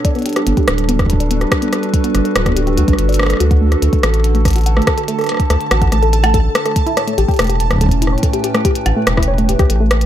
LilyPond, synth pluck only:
\new Staff \with { instrumentName = "Synth pluck" } { \time 4/4 \key d \major \tempo 4 = 143 d''16 b16 g'16 g'16 b16 g'16 r8 b16 r16 b'16 d''16 b16 g'16 g'16 b16 | g'16 r8 b16 r16 b'16 d''16 b16 g'16 g'16 fis'16 d'16 r16 d''16 d'16 b'16 | fis'16 fis''16 a16 a'16 a'16 a16 a'16 r8 a16 r16 fis'16 fis''16 a16 a'16 a'16 | a16 a'16 r8 a16 r16 fis'16 fis''16 a16 a'16 a'16 a16 a'16 r8 a16 |
r16 e'16 cis''16 a16 g'16 g'16 a16 g'16 r8 a16 r16 e'16 cis''16 a16 g'16 | g'16 a16 g'16 r8 a16 r16 e'16 cis''16 a16 g'16 g'16 a16 a16 r8 | }